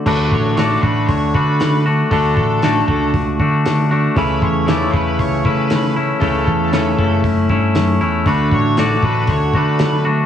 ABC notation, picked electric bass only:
X:1
M:4/4
L:1/8
Q:1/4=117
K:D
V:1 name="Picked electric bass" clef=bass
D,, A,,,2 A,,, D,, D,3 | D,, A,,,2 C,, C,, D,3 | C,, E,,2 E,, C,, C,3 | C,, E,,2 F,,, F,,, G,, F,, E,, |
D,, A,,,2 A,,, D,, D,3 |]